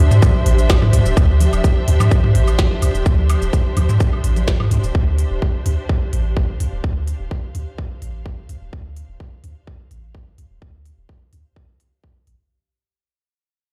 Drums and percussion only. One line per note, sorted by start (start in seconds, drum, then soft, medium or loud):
0.11 mid tom medium
0.11 shaker soft
0.22 kick loud
0.22 high conga soft
0.22 high woodblock soft
0.22 shaker medium
0.46 open hi-hat medium
0.59 shaker soft
0.70 kick loud
0.70 snare loud
0.70 high woodblock medium
0.70 shaker soft
0.82 mid tom loud
0.82 high conga soft
0.93 mid tom medium
0.93 open hi-hat loud
0.93 shaker medium
1.06 shaker soft
1.17 kick loud
1.17 high woodblock soft
1.17 shaker soft
1.40 open hi-hat loud
1.40 high conga soft
1.40 shaker soft
1.53 high woodblock soft
1.53 shaker soft
1.64 kick loud
1.64 shaker medium
1.88 open hi-hat loud
2.00 mid tom medium
2.00 high conga soft
2.00 high woodblock medium
2.00 shaker soft
2.11 kick loud
2.11 shaker medium
2.24 mid tom medium
2.35 open hi-hat medium
2.47 high woodblock soft
2.47 shaker soft
2.59 kick loud
2.59 snare loud
2.59 high conga soft
2.59 shaker soft
2.82 open hi-hat loud
2.82 high woodblock soft
2.82 shaker medium
2.95 shaker soft
3.06 kick loud
3.06 shaker medium
3.18 high conga soft
3.29 open hi-hat loud
3.29 high woodblock medium
3.29 shaker soft
3.42 shaker soft
3.53 kick loud
3.53 shaker soft
3.77 open hi-hat medium
3.77 high conga soft
3.77 high woodblock soft
3.89 mid tom medium
3.89 shaker soft
4.00 kick loud
4.00 shaker soft
4.13 high woodblock soft
4.24 open hi-hat medium
4.36 high conga soft
4.36 shaker soft
4.48 kick loud
4.48 snare loud
4.48 shaker soft
4.60 mid tom medium
4.60 high woodblock medium
4.71 mid tom medium
4.71 open hi-hat loud
4.71 shaker soft
4.84 shaker soft
4.95 kick loud
5.18 open hi-hat medium
5.42 kick medium
5.66 open hi-hat medium
5.89 kick loud
6.13 open hi-hat medium
6.37 kick loud
6.60 open hi-hat medium
6.84 kick loud
7.07 open hi-hat medium
7.31 kick loud
7.55 open hi-hat medium
7.78 kick loud
8.02 open hi-hat medium
8.26 kick loud
8.49 open hi-hat medium
8.73 kick loud
8.96 open hi-hat medium
9.20 kick medium
9.44 open hi-hat medium
9.67 kick loud
9.91 open hi-hat medium
10.15 kick loud
10.38 open hi-hat medium
10.62 kick loud
10.86 open hi-hat medium
11.09 kick loud
11.33 open hi-hat medium
11.56 kick loud
11.80 open hi-hat medium
12.04 kick medium
12.27 open hi-hat medium